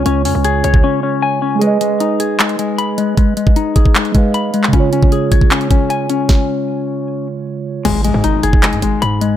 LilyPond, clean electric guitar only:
\new Staff \with { instrumentName = "Clean electric guitar" } { \time 4/4 \key gis \dorian \tempo 4 = 154 <cis' cis'' gis''>8 cis'8 gis'8 cis''8 cis'8 cis'8 gis''8 cis'8 | gis8 gis8 dis'8 gis'8 gis8 gis8 b''8 gis8 | gis8 gis8 dis'8 gis'8 gis8 gis8 b''8 gis8 | cis'8 cis'8 gis'8 cis''8 cis'8 cis'8 gis''8 cis'8~ |
cis'2~ cis'8 r4. | gis8 gis8 dis'8 gis'8 gis8 gis8 b''8 gis8 | }